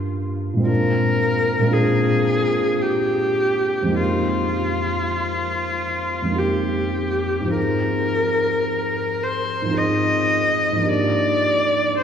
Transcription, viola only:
0.69 1.75 A#4 medium
1.73 2.84 G#4 medium
2.82 3.98 G4 medium
3.99 6.40 F4 medium
6.38 7.56 G4 soft
7.57 9.25 A#4 medium
9.24 9.79 C5 medium
9.77 10.90 D#5 medium
10.89 11.97 D5 medium
11.97 12.03 C5 medium

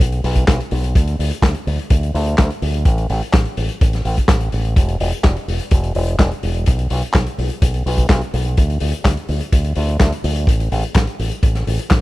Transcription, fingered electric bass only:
0.00 0.21 B1 medium
0.24 0.45 B1 medium
0.48 0.58 B1 loud
0.72 0.93 B1 loud
0.95 1.16 D2 loud
1.19 1.30 D2 medium
1.42 1.53 D2 medium
1.67 1.77 D2 medium
1.90 2.11 D2 medium
2.14 2.35 D2 medium
2.39 2.49 D2 loud
2.62 2.83 D2 loud
2.85 3.07 A1 loud
3.10 3.20 A1 medium
3.34 3.44 A1 medium
3.57 3.68 A1 medium
3.81 4.02 A1 medium
4.05 4.15 A1 medium
4.29 4.50 A1 medium
4.53 4.74 A1 medium
4.76 4.97 E1 loud
5.00 5.11 E1 medium
5.24 5.34 E1 medium
5.48 5.58 E1 medium
5.72 5.92 E1 medium
5.95 6.16 E1 medium
6.19 6.30 E1 loud
6.43 6.64 E1 loud
6.68 6.88 B1 loud
6.91 7.01 B1 medium
7.15 7.25 B1 medium
7.38 7.49 B1 medium
7.62 7.83 B1 medium
7.86 8.07 B1 medium
8.10 8.20 B1 loud
8.34 8.54 B1 loud
8.58 8.78 D2 loud
8.81 8.92 D2 medium
9.05 9.15 D2 medium
9.29 9.39 D2 medium
9.52 9.73 D2 medium
9.76 9.97 D2 medium
10.00 10.11 D2 loud
10.24 10.45 D2 loud
10.47 10.68 A1 loud
10.72 10.82 A1 medium
10.95 11.06 A1 medium
11.19 11.30 A1 medium
11.43 11.64 A1 medium
11.67 11.77 A1 medium
11.91 12.01 A1 medium

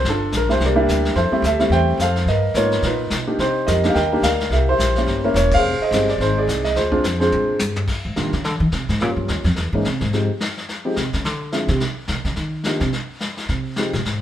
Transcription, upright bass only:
0.04 0.31 G1 medium
0.32 0.59 A#1 medium
0.60 0.87 C2 medium
0.88 1.15 D2 medium
1.15 1.31 F2 medium
1.32 muted upright bass stroke soft
1.42 1.69 D2 medium
1.70 1.97 E2 medium
1.98 2.25 F2 medium
2.26 2.54 G2 medium
2.54 2.82 G#2 medium
2.83 3.10 A#2 medium
3.11 3.38 B2 medium
3.39 3.66 C3 medium
3.68 3.94 F2 medium
3.95 4.22 D#2 medium
4.22 4.49 D2 medium
4.50 4.78 C2 medium
4.79 5.06 A#1 medium
5.06 5.33 G1 medium
5.34 5.62 E1 medium
5.62 5.78 F1 medium
5.79 muted upright bass stroke soft
5.91 6.18 G1 medium
6.18 6.46 G#1 medium
6.47 6.75 C2 medium
6.75 7.03 D2 medium
7.04 7.31 F2 medium
7.32 7.59 A#2 medium
7.60 7.87 G2 medium
8.05 8.16 G#2 medium
8.17 8.33 A#2 medium
8.33 8.45 C#3 medium
8.45 8.60 D3 medium
8.60 8.72 D#3 medium
8.72 8.88 C3 medium
8.89 9.02 G#2 medium
9.02 9.16 A#2 medium
9.16 9.28 G2 medium
9.29 9.44 D#2 medium
9.44 9.56 F2 medium
9.57 9.72 E2 medium
9.72 9.84 G#2 medium
9.86 10.00 C3 medium
10.01 10.27 G#2 medium
10.97 11.13 C3 medium
11.14 11.25 C#3 medium
11.25 11.68 D3 medium
11.69 11.80 C3 medium
12.09 12.24 B2 medium
12.25 12.36 C#3 medium
12.37 12.78 D#3 medium
12.81 12.88 C3 medium
13.49 13.90 C3 medium
13.93 14.05 A#2 medium
14.06 14.21 G#2 medium

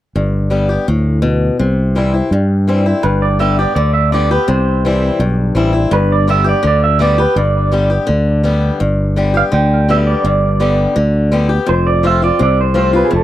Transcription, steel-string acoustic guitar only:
0.16 0.84 G2 medium
0.50 0.68 D3 soft
0.50 0.68 G3 medium
0.50 0.68 B3 medium
0.50 0.68 G4 medium
0.69 0.87 B3 soft
0.69 0.86 G4 soft
0.88 1.22 A2 medium
1.22 1.57 B2 medium
1.59 2.28 C3 medium
1.95 2.13 E3 medium
1.95 2.13 G3 soft
1.95 2.13 C4 medium
1.95 2.12 E4 medium
2.14 2.31 C4 soft
2.14 2.31 E4 soft
2.32 3.00 G2 medium
2.68 2.85 E3 medium
2.68 2.85 G3 medium
2.68 2.85 C4 medium
2.68 2.85 E4 medium
2.86 3.03 C4 soft
2.86 3.03 E4 medium
3.03 3.72 G2 medium
3.39 3.57 D3 medium
3.39 3.57 G3 medium
3.39 3.57 B3 medium
3.39 3.58 G4 medium
3.59 3.76 B3 soft
3.59 3.75 G4 medium
3.76 4.11 D3 medium
4.12 4.29 D3 medium
4.12 4.30 G3 medium
4.12 4.30 B3 medium
4.12 4.30 G4 medium
4.31 4.48 B3 soft
4.31 4.47 G4 medium
4.48 5.16 C3 medium
4.85 5.18 E3 medium
4.85 5.19 G3 medium
4.85 5.19 C4 medium
4.85 5.19 E4 medium
5.20 5.88 G2 medium
5.55 5.73 E3 medium
5.55 5.73 G3 medium
5.55 5.73 C4 medium
5.55 5.72 E4 medium
5.73 5.91 C4 soft
5.73 5.91 E4 medium
5.91 6.60 G2 medium
6.28 6.45 D3 medium
6.28 6.45 G3 medium
6.28 6.45 B3 medium
6.28 6.43 G4 medium
6.44 6.63 B3 soft
6.44 6.62 G4 medium
6.63 6.98 D3 medium
6.99 7.17 D3 medium
6.99 7.17 G3 medium
6.99 7.18 B3 medium
6.99 7.17 G4 medium
7.18 7.36 B3 soft
7.18 7.35 G4 medium
7.36 8.05 G2 medium
7.72 7.89 D3 medium
7.72 7.89 G3 medium
7.72 7.90 B3 medium
7.72 7.89 G4 medium
7.90 8.08 B3 soft
7.90 8.07 G4 medium
8.07 8.42 D3 medium
8.43 8.78 D3 medium
8.43 8.78 G3 medium
8.43 8.79 B3 medium
8.43 8.79 G4 medium
8.80 9.49 G2 medium
9.16 9.34 D3 medium
9.16 9.34 G3 medium
9.16 9.34 B3 medium
9.16 9.33 G4 medium
9.34 9.52 B3 soft
9.34 9.51 G4 medium
9.52 9.87 D3 medium
9.89 10.23 D3 medium
9.89 10.23 G3 medium
9.89 10.23 B3 medium
9.89 10.23 G4 medium
10.24 10.93 G2 medium
10.60 10.94 D3 medium
10.60 10.95 G3 medium
10.60 10.95 B3 medium
10.60 10.95 G4 medium
10.96 11.30 D3 medium
11.32 11.49 D3 medium
11.32 11.49 G3 medium
11.32 11.49 B3 medium
11.32 11.48 G4 medium
11.49 11.68 B3 soft
11.49 11.67 G4 medium
11.66 12.36 F2 medium
12.03 12.21 F3 medium
12.03 12.21 A3 medium
12.03 12.22 C4 medium
12.03 12.21 F4 medium
12.22 12.40 C4 soft
12.22 12.40 F4 medium
12.39 13.08 C3 medium
12.74 12.93 F3 medium
12.74 12.93 A3 medium
12.74 12.93 C4 medium
12.74 12.92 F4 medium
12.93 13.12 C4 soft
12.93 13.11 F4 medium
13.11 13.23 F2 medium

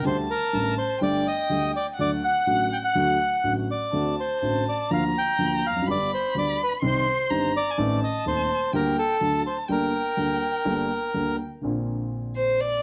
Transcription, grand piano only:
0.04 0.25 D2 medium
0.04 0.25 D3 medium
0.04 0.25 G3 medium
0.04 0.25 A3 medium
0.04 0.25 G4 medium
0.53 0.73 A1 soft
0.53 0.73 A2 soft
0.53 0.73 D3 soft
0.53 0.73 G3 soft
0.53 0.73 A3 soft
0.53 0.73 G4 soft
1.01 1.22 G1 medium
1.01 1.22 G2 medium
1.01 1.21 D3 medium
1.01 1.22 G3 medium
1.01 1.22 A3 medium
1.01 1.22 G4 medium
1.49 1.70 D2 soft
1.49 1.70 D3 medium
1.49 1.70 G3 soft
1.49 1.70 A3 soft
1.49 1.70 G4 soft
1.98 2.19 D2 medium
1.98 2.19 D3 medium
1.98 2.19 F#3 soft
1.98 2.19 A3 soft
1.98 2.19 F#4 medium
2.46 2.67 A1 soft
2.46 2.67 A2 soft
2.46 2.67 D3 soft
2.46 2.67 F#3 soft
2.46 2.67 A3 soft
2.46 2.67 F#4 soft
2.95 3.16 D2 medium
2.95 3.16 D3 medium
2.95 3.16 F#3 medium
2.95 3.16 A3 medium
2.95 3.16 F#4 medium
3.44 3.65 A1 soft
3.44 3.65 A2 soft
3.44 3.65 D3 soft
3.44 3.65 F#3 soft
3.44 3.65 A3 soft
3.44 3.65 F#4 soft
3.93 4.14 D2 medium
3.93 4.14 D3 medium
3.93 4.13 A3 medium
3.93 4.14 C4 soft
3.93 4.14 F#4 medium
4.42 4.63 A1 soft
4.42 4.63 A2 soft
4.42 4.62 D3 soft
4.42 4.63 A3 soft
4.42 4.63 C4 soft
4.42 4.63 F#4 soft
4.90 5.11 D2 medium
4.90 5.11 D3 medium
4.90 5.11 F3 medium
4.90 5.11 A#3 medium
4.90 5.11 F4 medium
5.39 5.59 D2 soft
5.39 5.60 D3 soft
5.39 5.59 F3 soft
5.39 5.59 A#3 soft
5.39 5.60 F4 soft
5.70 5.76 E2 soft
5.76 5.82 F2 soft
5.82 5.87 F#2 medium
5.88 6.08 G1 medium
5.88 6.08 G2 medium
5.88 6.07 D3 soft
5.88 6.08 G3 soft
5.88 6.08 B3 medium
5.88 6.08 G4 medium
6.35 6.55 D2 soft
6.35 6.55 D3 soft
6.35 6.55 G3 soft
6.35 6.55 B3 soft
6.35 6.55 G4 soft
6.82 7.02 C2 medium
6.82 7.03 C3 medium
6.82 7.02 D#3 medium
6.82 7.02 G3 medium
6.82 7.03 C4 medium
6.82 7.03 G4 medium
7.30 7.51 G1 soft
7.30 7.50 G2 medium
7.30 7.50 D#3 soft
7.30 7.50 G3 soft
7.30 7.50 C4 soft
7.30 7.51 G4 soft
7.78 7.98 A1 medium
7.78 7.98 A2 medium
7.78 7.98 D#3 medium
7.78 7.98 A3 medium
7.78 7.98 C4 soft
7.78 7.98 A4 medium
8.26 8.46 D#1 soft
8.26 8.46 D#2 soft
8.26 8.46 D#3 soft
8.26 8.46 A3 soft
8.26 8.46 C4 soft
8.26 8.46 A4 soft
8.73 8.94 D2 medium
8.73 8.93 D3 medium
8.73 8.93 G3 medium
8.73 8.94 A#3 soft
8.73 8.94 G4 medium
9.21 9.41 D2 soft
9.21 9.41 D3 medium
9.21 9.41 F#3 soft
9.21 9.41 A3 soft
9.21 9.41 D4 soft
9.21 9.41 A4 soft
9.69 9.89 G1 medium
9.69 9.89 G2 medium
9.69 9.89 G3 medium
9.69 9.89 A#3 soft
9.69 9.89 D4 soft
9.69 9.90 A4 medium
10.17 10.37 D2 soft
10.17 10.38 D3 soft
10.17 10.37 G3 soft
10.17 10.37 A#3 soft
10.17 10.38 D4 soft
10.17 10.38 A4 soft
10.65 10.86 G1 medium
10.65 10.86 G2 medium
10.65 10.86 G3 medium
10.65 10.86 A#3 medium
10.65 10.86 D4 soft
10.65 10.86 A4 medium
11.14 11.35 D2 soft
11.14 11.35 D3 soft
11.14 11.35 G3 soft
11.14 11.35 A#3 soft
11.14 11.35 D4 soft
11.14 11.35 A4 soft
11.61 12.82 A#1 medium
11.61 12.82 A#2 medium
11.61 12.82 D3 soft
11.61 12.82 A#3 soft
11.61 12.82 C4 soft
11.65 12.82 F4 soft

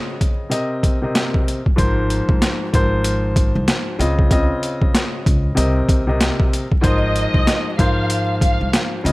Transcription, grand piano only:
0.00 0.52 C#3 medium
0.00 0.49 C4 medium
0.00 0.52 F4 medium
0.00 0.50 D#5 loud
0.50 0.97 C3 medium
0.50 0.97 C4 medium
0.50 0.98 A#4 medium
0.50 0.98 D#5 loud
1.02 1.59 C3 medium
1.02 1.60 C4 medium
1.02 1.60 A#4 medium
1.02 1.60 D#5 medium
1.76 2.66 G#2 loud
1.76 2.66 F3 medium
1.76 2.67 A#4 medium
1.76 2.67 C5 loud
2.73 3.99 G#2 medium
2.73 4.00 F3 medium
2.73 4.00 A#4 medium
2.73 4.00 C5 loud
3.99 4.29 C#3 medium
3.99 4.29 C4 medium
3.99 4.29 F4 medium
3.99 4.30 D#5 loud
4.30 5.57 C#3 medium
4.30 5.54 C4 medium
4.30 5.58 F4 medium
4.30 5.56 D#5 loud
5.55 6.02 C3 medium
5.55 6.03 C4 medium
5.55 6.03 A#4 medium
5.55 6.03 D#5 loud
6.07 6.65 C3 loud
6.07 6.65 C4 medium
6.07 6.65 A#4 medium
6.07 6.66 D#5 loud
6.81 7.71 G#2 loud
6.81 7.72 F3 medium
6.81 7.72 A#4 medium
6.81 7.72 C5 loud
7.78 9.04 G#2 medium
7.78 9.05 F3 medium
7.78 9.05 A#4 medium
7.78 9.06 C5 loud
9.04 9.12 C#3 loud
9.04 9.12 C4 medium
9.04 9.12 F4 medium
9.04 9.12 D#5 loud

